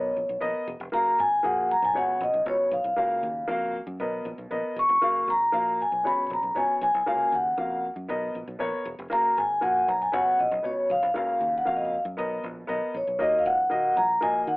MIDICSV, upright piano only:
0, 0, Header, 1, 2, 480
1, 0, Start_track
1, 0, Key_signature, 6, "major"
1, 0, Tempo, 511073
1, 872, Time_signature, 4, 2, 24, 8
1, 13681, End_track
2, 0, Start_track
2, 0, Title_t, "Upright piano"
2, 0, Program_c, 0, 0
2, 0, Note_on_c, 0, 47, 54
2, 0, Note_on_c, 0, 59, 70
2, 0, Note_on_c, 0, 70, 61
2, 0, Note_on_c, 0, 75, 70
2, 153, Note_off_c, 0, 59, 0
2, 154, Note_off_c, 0, 70, 0
2, 157, Note_off_c, 0, 75, 0
2, 380, Note_on_c, 0, 59, 78
2, 385, Note_on_c, 0, 70, 67
2, 387, Note_on_c, 0, 75, 91
2, 591, Note_off_c, 0, 47, 0
2, 633, Note_off_c, 0, 59, 0
2, 636, Note_off_c, 0, 70, 0
2, 637, Note_off_c, 0, 75, 0
2, 864, Note_on_c, 0, 58, 74
2, 869, Note_on_c, 0, 66, 65
2, 876, Note_on_c, 0, 77, 77
2, 1116, Note_off_c, 0, 58, 0
2, 1118, Note_off_c, 0, 66, 0
2, 1121, Note_off_c, 0, 77, 0
2, 1342, Note_on_c, 0, 58, 70
2, 1348, Note_on_c, 0, 66, 65
2, 1352, Note_on_c, 0, 68, 79
2, 1595, Note_off_c, 0, 58, 0
2, 1598, Note_off_c, 0, 66, 0
2, 1600, Note_off_c, 0, 68, 0
2, 1821, Note_on_c, 0, 59, 63
2, 1828, Note_on_c, 0, 66, 61
2, 1829, Note_on_c, 0, 49, 60
2, 1837, Note_on_c, 0, 73, 78
2, 2075, Note_off_c, 0, 59, 0
2, 2078, Note_off_c, 0, 66, 0
2, 2083, Note_off_c, 0, 73, 0
2, 2305, Note_on_c, 0, 59, 63
2, 2311, Note_on_c, 0, 66, 57
2, 2319, Note_on_c, 0, 73, 65
2, 2514, Note_off_c, 0, 49, 0
2, 2557, Note_off_c, 0, 59, 0
2, 2560, Note_off_c, 0, 66, 0
2, 2564, Note_off_c, 0, 73, 0
2, 2783, Note_on_c, 0, 58, 73
2, 2789, Note_on_c, 0, 49, 62
2, 2790, Note_on_c, 0, 66, 64
2, 2794, Note_on_c, 0, 77, 76
2, 3036, Note_off_c, 0, 58, 0
2, 3040, Note_off_c, 0, 66, 0
2, 3042, Note_off_c, 0, 77, 0
2, 3264, Note_on_c, 0, 58, 82
2, 3273, Note_on_c, 0, 66, 80
2, 3279, Note_on_c, 0, 77, 88
2, 3474, Note_off_c, 0, 49, 0
2, 3517, Note_off_c, 0, 58, 0
2, 3521, Note_off_c, 0, 66, 0
2, 3524, Note_off_c, 0, 77, 0
2, 3754, Note_on_c, 0, 59, 76
2, 3759, Note_on_c, 0, 70, 73
2, 3760, Note_on_c, 0, 47, 70
2, 3763, Note_on_c, 0, 75, 78
2, 4002, Note_off_c, 0, 59, 0
2, 4005, Note_off_c, 0, 70, 0
2, 4006, Note_off_c, 0, 75, 0
2, 4232, Note_on_c, 0, 59, 76
2, 4235, Note_on_c, 0, 70, 65
2, 4241, Note_on_c, 0, 75, 81
2, 4440, Note_off_c, 0, 47, 0
2, 4481, Note_off_c, 0, 59, 0
2, 4483, Note_off_c, 0, 70, 0
2, 4486, Note_off_c, 0, 75, 0
2, 4710, Note_on_c, 0, 58, 72
2, 4718, Note_on_c, 0, 66, 62
2, 4723, Note_on_c, 0, 77, 81
2, 4960, Note_off_c, 0, 58, 0
2, 4964, Note_off_c, 0, 66, 0
2, 4967, Note_off_c, 0, 77, 0
2, 5186, Note_on_c, 0, 58, 75
2, 5195, Note_on_c, 0, 66, 59
2, 5199, Note_on_c, 0, 77, 81
2, 5438, Note_off_c, 0, 58, 0
2, 5443, Note_off_c, 0, 66, 0
2, 5445, Note_off_c, 0, 77, 0
2, 5672, Note_on_c, 0, 59, 63
2, 5677, Note_on_c, 0, 66, 57
2, 5678, Note_on_c, 0, 49, 59
2, 5682, Note_on_c, 0, 73, 69
2, 5921, Note_off_c, 0, 59, 0
2, 5924, Note_off_c, 0, 66, 0
2, 5927, Note_off_c, 0, 73, 0
2, 6151, Note_on_c, 0, 59, 65
2, 6155, Note_on_c, 0, 66, 52
2, 6161, Note_on_c, 0, 73, 70
2, 6359, Note_off_c, 0, 49, 0
2, 6401, Note_off_c, 0, 59, 0
2, 6403, Note_off_c, 0, 66, 0
2, 6406, Note_off_c, 0, 73, 0
2, 6633, Note_on_c, 0, 58, 72
2, 6638, Note_on_c, 0, 49, 61
2, 6639, Note_on_c, 0, 66, 63
2, 6644, Note_on_c, 0, 77, 81
2, 6882, Note_off_c, 0, 58, 0
2, 6885, Note_off_c, 0, 66, 0
2, 6888, Note_off_c, 0, 77, 0
2, 7115, Note_on_c, 0, 58, 67
2, 7123, Note_on_c, 0, 66, 61
2, 7128, Note_on_c, 0, 77, 81
2, 7319, Note_off_c, 0, 49, 0
2, 7363, Note_off_c, 0, 58, 0
2, 7367, Note_off_c, 0, 66, 0
2, 7370, Note_off_c, 0, 77, 0
2, 7593, Note_on_c, 0, 59, 79
2, 7597, Note_on_c, 0, 47, 65
2, 7598, Note_on_c, 0, 70, 71
2, 7603, Note_on_c, 0, 75, 87
2, 7842, Note_off_c, 0, 59, 0
2, 7844, Note_off_c, 0, 70, 0
2, 7847, Note_off_c, 0, 75, 0
2, 8066, Note_on_c, 0, 59, 75
2, 8071, Note_on_c, 0, 70, 72
2, 8077, Note_on_c, 0, 73, 88
2, 8279, Note_off_c, 0, 47, 0
2, 8318, Note_off_c, 0, 59, 0
2, 8321, Note_off_c, 0, 70, 0
2, 8324, Note_off_c, 0, 73, 0
2, 8544, Note_on_c, 0, 58, 76
2, 8553, Note_on_c, 0, 66, 64
2, 8556, Note_on_c, 0, 77, 74
2, 8798, Note_off_c, 0, 58, 0
2, 8802, Note_off_c, 0, 66, 0
2, 8803, Note_off_c, 0, 77, 0
2, 9025, Note_on_c, 0, 58, 71
2, 9029, Note_on_c, 0, 66, 68
2, 9035, Note_on_c, 0, 80, 83
2, 9278, Note_off_c, 0, 58, 0
2, 9280, Note_off_c, 0, 66, 0
2, 9283, Note_off_c, 0, 80, 0
2, 9506, Note_on_c, 0, 59, 72
2, 9513, Note_on_c, 0, 49, 59
2, 9513, Note_on_c, 0, 66, 63
2, 9518, Note_on_c, 0, 73, 76
2, 9758, Note_off_c, 0, 59, 0
2, 9762, Note_off_c, 0, 66, 0
2, 9764, Note_off_c, 0, 73, 0
2, 9979, Note_on_c, 0, 59, 64
2, 9986, Note_on_c, 0, 66, 58
2, 9993, Note_on_c, 0, 73, 66
2, 10197, Note_off_c, 0, 49, 0
2, 10235, Note_off_c, 0, 59, 0
2, 10238, Note_off_c, 0, 66, 0
2, 10242, Note_off_c, 0, 73, 0
2, 10462, Note_on_c, 0, 58, 73
2, 10467, Note_on_c, 0, 49, 66
2, 10468, Note_on_c, 0, 66, 62
2, 10473, Note_on_c, 0, 77, 81
2, 10716, Note_off_c, 0, 58, 0
2, 10719, Note_off_c, 0, 66, 0
2, 10722, Note_off_c, 0, 77, 0
2, 10944, Note_on_c, 0, 58, 66
2, 10951, Note_on_c, 0, 66, 63
2, 10957, Note_on_c, 0, 77, 82
2, 11153, Note_off_c, 0, 49, 0
2, 11197, Note_off_c, 0, 58, 0
2, 11200, Note_off_c, 0, 66, 0
2, 11203, Note_off_c, 0, 77, 0
2, 11429, Note_on_c, 0, 59, 75
2, 11434, Note_on_c, 0, 70, 71
2, 11437, Note_on_c, 0, 47, 68
2, 11439, Note_on_c, 0, 75, 91
2, 11679, Note_off_c, 0, 59, 0
2, 11682, Note_off_c, 0, 70, 0
2, 11684, Note_off_c, 0, 75, 0
2, 11902, Note_on_c, 0, 59, 80
2, 11907, Note_on_c, 0, 70, 71
2, 11917, Note_on_c, 0, 75, 85
2, 12117, Note_off_c, 0, 47, 0
2, 12156, Note_off_c, 0, 59, 0
2, 12158, Note_off_c, 0, 70, 0
2, 12163, Note_off_c, 0, 75, 0
2, 12387, Note_on_c, 0, 58, 76
2, 12392, Note_on_c, 0, 51, 61
2, 12393, Note_on_c, 0, 66, 66
2, 12398, Note_on_c, 0, 75, 80
2, 12638, Note_off_c, 0, 58, 0
2, 12641, Note_off_c, 0, 66, 0
2, 12643, Note_off_c, 0, 75, 0
2, 12863, Note_on_c, 0, 58, 69
2, 12872, Note_on_c, 0, 66, 64
2, 12875, Note_on_c, 0, 75, 81
2, 13074, Note_off_c, 0, 51, 0
2, 13116, Note_off_c, 0, 58, 0
2, 13120, Note_off_c, 0, 66, 0
2, 13121, Note_off_c, 0, 75, 0
2, 13343, Note_on_c, 0, 58, 68
2, 13346, Note_on_c, 0, 66, 58
2, 13351, Note_on_c, 0, 75, 74
2, 13595, Note_off_c, 0, 58, 0
2, 13596, Note_off_c, 0, 66, 0
2, 13599, Note_off_c, 0, 75, 0
2, 13681, End_track
0, 0, End_of_file